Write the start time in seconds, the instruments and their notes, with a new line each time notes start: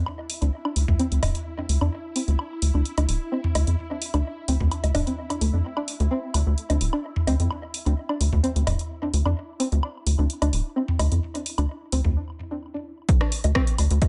Already playing: synth drone E4
0.06 high woodblock
0.30 open hi-hat
0.42 analog synth bass D2, synth pluck D4, closed hi-hat
0.65 synth pluck D4, high woodblock
0.76 analog synth bass D2, open hi-hat
0.88 analog synth bass D2, mid tom
0.99 synth pluck C4, closed hi-hat
1.12 analog synth bass D2, closed hi-hat
1.23 analog synth bass D1, mid tom, open hi-hat, high woodblock, low woodblock
1.35 closed hi-hat
1.58 synth pluck D4
1.69 analog synth bass D2, open hi-hat
1.81 analog synth bass F2, synth pluck D4, high woodblock
2.15 synth pluck C4, open hi-hat
2.28 analog synth bass D2, closed hi-hat
2.39 high woodblock
2.62 analog synth bass D2, open hi-hat
2.74 analog synth bass D2, synth pluck D4
2.85 closed hi-hat
2.98 analog synth bass D2, synth pluck D4, closed hi-hat, high woodblock, low woodblock
3.09 analog synth bass D1, open hi-hat
3.32 synth pluck C4
3.44 mid tom
3.55 analog synth bass D2, open hi-hat, high woodblock, low woodblock
3.67 analog synth bass F2, closed hi-hat
3.91 synth pluck D4
4.02 open hi-hat
4.14 analog synth bass D2, synth pluck D4, closed hi-hat, high woodblock
4.48 analog synth bass D2, synth pluck C4, open hi-hat
4.60 analog synth bass D2, mid tom
4.71 closed hi-hat, high woodblock
4.84 analog synth bass D2, closed hi-hat, low woodblock
4.94 analog synth bass D1, synth pluck D4, mid tom, open hi-hat, low woodblock
5.07 synth pluck C4, closed hi-hat
5.30 synth pluck D4, closed hi-hat, high woodblock
5.41 analog synth bass D2, synth pluck A3, open hi-hat
5.54 analog synth bass F2
5.77 synth pluck D4, high woodblock
5.88 open hi-hat
6.00 analog synth bass D2, closed hi-hat
6.11 synth pluck C4
6.34 analog synth bass D2, open hi-hat, high woodblock
6.47 analog synth bass D2
6.58 closed hi-hat
6.70 analog synth bass D2, synth pluck D4, closed hi-hat, low woodblock
6.81 analog synth bass D1, open hi-hat
6.93 synth pluck D4, high woodblock
7.16 mid tom
7.27 analog synth bass D2, synth pluck C4, open hi-hat, low woodblock
7.40 analog synth bass F2, closed hi-hat
7.51 high woodblock
7.74 open hi-hat
7.86 analog synth bass D2, synth pluck D4, closed hi-hat
8.09 synth pluck D4, high woodblock
8.20 analog synth bass D2, open hi-hat
8.33 analog synth bass D2, mid tom
8.44 synth pluck C4, closed hi-hat
8.56 analog synth bass D2, closed hi-hat
8.67 analog synth bass D1, mid tom, open hi-hat, high woodblock, low woodblock
8.79 closed hi-hat
9.02 synth pluck D4
9.13 analog synth bass D2, open hi-hat
9.26 analog synth bass F2, synth pluck D4, high woodblock
9.60 synth pluck C4, open hi-hat
9.72 analog synth bass D2, closed hi-hat
9.83 high woodblock
10.06 analog synth bass D2, open hi-hat
10.19 analog synth bass D2, synth pluck D4
10.30 closed hi-hat
10.42 analog synth bass D2, synth pluck D4, closed hi-hat, high woodblock, low woodblock
10.53 analog synth bass D1, open hi-hat
10.76 synth pluck C4
10.88 mid tom
10.99 analog synth bass D2, open hi-hat, high woodblock, low woodblock
11.12 analog synth bass F2, closed hi-hat
11.35 synth pluck D4, closed hi-hat
11.46 open hi-hat
11.58 analog synth bass D2, synth pluck D4, closed hi-hat, high woodblock
11.92 analog synth bass D2, synth pluck C4, open hi-hat
12.05 analog synth bass D2, mid tom
12.51 synth pluck D4
12.74 synth pluck D4
13.09 kick, closed hi-hat
13.21 synth pluck D4, cross-stick, high woodblock
13.32 open hi-hat
13.44 analog synth bass D2, closed hi-hat, low woodblock
13.55 synth pluck C4, kick, cross-stick
13.67 closed hi-hat
13.78 analog synth bass D2, open hi-hat, high woodblock
13.91 analog synth bass D2, closed hi-hat
14.02 kick, closed hi-hat, low woodblock